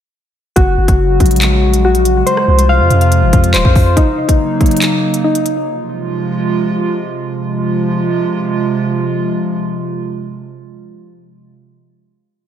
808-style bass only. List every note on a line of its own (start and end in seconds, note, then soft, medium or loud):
0.56 0.77 F#1 loud
0.78 0.88 F#1 loud
0.88 1.19 F#1 loud
1.20 2.23 A#1 loud
2.48 2.81 C2 loud
2.80 2.90 F2 loud
2.90 3.24 F2 loud
3.22 3.32 G#1 loud
3.33 3.56 F2 loud
3.54 3.64 D#1 loud
3.65 3.75 F2 loud
3.76 3.96 F2 loud